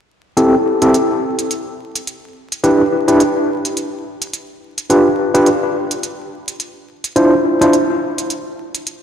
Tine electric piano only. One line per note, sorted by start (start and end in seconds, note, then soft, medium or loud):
0.37 0.54 C4 medium
0.37 0.54 E4 medium
0.37 0.54 G4 medium
0.37 0.54 A4 medium
0.82 0.95 C4 medium
0.82 0.95 E4 medium
0.82 0.95 G4 medium
0.82 0.95 A4 medium
2.64 2.81 D4 medium
2.64 2.81 E4 medium
2.64 2.81 G4 medium
2.64 2.81 B4 medium
3.08 3.21 D4 medium
3.08 3.21 E4 medium
3.08 3.21 G4 medium
3.08 3.21 B4 medium
4.90 5.07 D4 medium
4.90 5.07 F4 medium
4.90 5.07 G4 medium
4.90 5.07 B4 medium
5.34 5.48 D4 medium
5.34 5.48 F4 medium
5.34 5.48 G4 medium
5.34 5.48 B4 medium
7.16 7.33 D4 medium
7.16 7.33 E4 medium
7.16 7.33 F4 medium
7.16 7.33 C5 medium
7.61 7.74 D4 medium
7.61 7.74 E4 medium
7.61 7.74 F4 medium
7.61 7.74 C5 medium